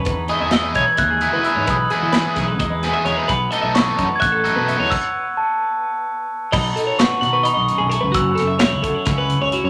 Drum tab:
CC |-------|-------|-------|x------|
HH |xxxxxxx|xxxxxxx|xxxxxxx|-------|
SD |--o----|--oo-o-|--o----|-------|
BD |o--oo--|o--oo--|o--oo--|o------|

CC |x------|-------|
HH |-xxxxxx|xxxxxxx|
SD |--o----|-oo-o--|
BD |o------|o--oo--|